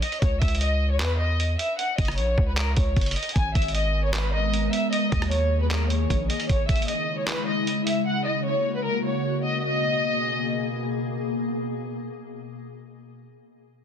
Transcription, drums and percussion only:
0.02 closed hi-hat
0.12 closed hi-hat
0.22 kick, closed hi-hat
0.42 kick, closed hi-hat, open hi-hat
0.48 closed hi-hat
0.55 closed hi-hat
0.61 closed hi-hat
1.00 clap, closed hi-hat
1.40 closed hi-hat
1.59 closed hi-hat
1.79 closed hi-hat
1.98 kick, closed hi-hat, open hi-hat
2.05 cross-stick, closed hi-hat
2.12 closed hi-hat
2.18 closed hi-hat
2.38 kick
2.57 clap, closed hi-hat
2.77 kick, closed hi-hat
2.96 kick, closed hi-hat
3.01 closed hi-hat
3.06 closed hi-hat
3.11 closed hi-hat
3.16 closed hi-hat
3.23 closed hi-hat
3.29 closed hi-hat
3.36 kick, closed hi-hat
3.55 kick, closed hi-hat, open hi-hat
3.62 closed hi-hat
3.68 closed hi-hat
3.75 closed hi-hat
4.14 clap, closed hi-hat
4.54 closed hi-hat
4.73 closed hi-hat
4.93 closed hi-hat
5.12 kick, closed hi-hat
5.22 cross-stick, closed hi-hat
5.31 closed hi-hat
5.71 clap, closed hi-hat
5.90 closed hi-hat
6.10 kick, closed hi-hat
6.30 closed hi-hat
6.40 closed hi-hat
6.49 kick, closed hi-hat
6.69 kick, closed hi-hat, open hi-hat
6.76 closed hi-hat
6.82 closed hi-hat
6.88 closed hi-hat
7.28 clap, closed hi-hat
7.67 closed hi-hat
7.87 closed hi-hat

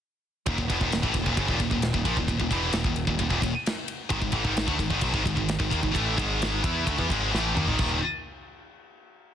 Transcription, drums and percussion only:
0.46 kick, ride
0.58 kick
0.70 kick, ride
0.81 kick
0.92 snare, ride
1.03 kick
1.14 kick, ride
1.26 kick
1.37 kick, ride
1.48 kick
1.60 kick, ride
1.71 kick
1.82 snare, ride
1.94 kick
2.05 kick, ride
2.17 kick
2.28 kick, ride
2.40 kick
2.51 kick, ride
2.73 snare, ride
2.84 kick
2.96 ride
3.07 kick
3.19 kick, ride
3.30 kick
3.42 kick, ride
3.66 snare, ride
3.88 ride
4.10 kick, ride
4.22 kick
4.32 kick, ride
4.45 kick
4.57 snare, ride
4.68 kick
4.79 kick, ride
4.90 kick
5.01 kick, ride
5.14 kick
5.26 kick, ride
5.37 kick
5.49 snare, ride
5.60 kick
5.71 kick, ride
5.83 kick
5.95 kick, ride
6.18 kick, ride
6.42 snare, ride
6.64 kick, ride
6.87 kick, ride
6.98 kick
7.10 kick, ride
7.34 snare
7.57 mid tom
7.68 floor tom
7.79 kick, crash

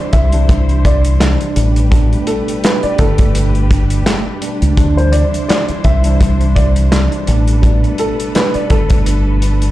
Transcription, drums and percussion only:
0.13 kick, closed hi-hat
0.32 closed hi-hat
0.49 kick, closed hi-hat
0.69 closed hi-hat
0.85 kick, closed hi-hat
1.05 closed hi-hat
1.20 snare, clap, closed hi-hat
1.41 closed hi-hat
1.56 closed hi-hat
1.76 closed hi-hat
1.92 kick, closed hi-hat
2.13 closed hi-hat
2.27 closed hi-hat
2.48 closed hi-hat
2.64 snare, clap, closed hi-hat
2.83 closed hi-hat
2.98 kick, closed hi-hat
3.18 kick, closed hi-hat
3.35 closed hi-hat
3.55 closed hi-hat
3.71 kick, closed hi-hat
3.90 closed hi-hat
4.06 snare, clap, closed hi-hat
4.42 closed hi-hat
4.62 closed hi-hat
4.77 kick, closed hi-hat
4.98 closed hi-hat
5.13 closed hi-hat
5.34 closed hi-hat
5.49 snare, clap, closed hi-hat
5.68 closed hi-hat
5.84 kick, closed hi-hat
6.04 closed hi-hat
6.21 kick, closed hi-hat
6.41 closed hi-hat
6.56 kick, closed hi-hat
6.76 closed hi-hat
6.92 snare, clap, closed hi-hat
7.12 closed hi-hat
7.27 closed hi-hat
7.48 closed hi-hat
7.63 kick, closed hi-hat
7.84 closed hi-hat
7.98 closed hi-hat
8.20 closed hi-hat
8.35 snare, clap, closed hi-hat
8.54 closed hi-hat
8.70 kick, closed hi-hat
8.90 kick, closed hi-hat
9.06 closed hi-hat
9.42 closed hi-hat
9.62 closed hi-hat

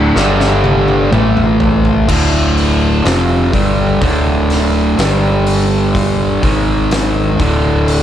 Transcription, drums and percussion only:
0.16 snare
0.41 snare
0.64 high tom
0.88 high tom
1.13 mid tom
1.37 mid tom
1.60 floor tom
1.85 floor tom
2.09 kick, crash
2.58 open hi-hat
3.05 snare, open hi-hat
3.53 kick, open hi-hat
4.02 kick, open hi-hat
4.50 snare, open hi-hat
4.99 snare, open hi-hat
5.47 open hi-hat
5.95 kick, open hi-hat
6.43 kick, open hi-hat
6.91 snare, open hi-hat
7.40 kick, open hi-hat
7.88 open hi-hat

